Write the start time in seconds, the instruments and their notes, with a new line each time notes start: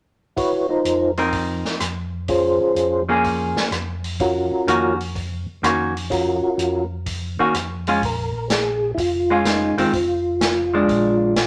0.37 tonewheel organ E4 F#4 B4 C#5, kick, open hi-hat
0.69 tonewheel organ D#4 F4 A#4 C5
0.84 tonewheel organ F2, closed hi-hat
1.17 hollow-body jazz guitar F3 C4 D#4 A#4, open hi-hat
1.33 kick, open hi-hat
1.65 snare
1.80 tonewheel organ F2, cross-stick, closed hi-hat
2.28 tonewheel organ C#4 F4 G#4 C5, kick, open hi-hat
2.75 tonewheel organ F2, closed hi-hat
3.09 hollow-body jazz guitar F3 A#3 C#4 G#4
3.24 kick, open hi-hat
3.57 snare
3.71 tonewheel organ F2, cross-stick, closed hi-hat
4.04 open hi-hat
4.20 tonewheel organ C#4 F4 F#4 A#4, kick, open hi-hat
4.67 tonewheel organ F2, hollow-body jazz guitar D#3 A#3 C#4 F#4, closed hi-hat
5.01 open hi-hat
5.15 kick, open hi-hat
5.62 tonewheel organ F2, hollow-body jazz guitar D#3 A#3 C#4 F#4, cross-stick, closed hi-hat
5.97 open hi-hat
6.10 tonewheel organ C#4 F4 F#4 A#4, kick, open hi-hat
6.58 tonewheel organ F2, closed hi-hat
7.06 kick, open hi-hat
7.39 hollow-body jazz guitar D#3 A#3 C#4 F#4
7.53 tonewheel organ F2, cross-stick, closed hi-hat
7.87 hollow-body jazz guitar G#3 C#4 F4, open hi-hat
8.02 tonewheel organ A#1 A#4, kick, open hi-hat
8.50 tonewheel organ G#4, snare, closed hi-hat
8.95 tonewheel organ F1 E4, kick, open hi-hat
9.00 tonewheel organ F4
9.30 hollow-body jazz guitar G#3 C#4 F4
9.45 tonewheel organ D#4, snare, closed hi-hat
9.77 tonewheel organ F1 F4, hollow-body jazz guitar D#3 G#3 C4, open hi-hat
9.93 tonewheel organ F1, kick, open hi-hat
10.41 snare, closed hi-hat
10.74 hollow-body jazz guitar F3 G#3 D4
10.88 tonewheel organ A#1, kick, open hi-hat
11.36 snare, closed hi-hat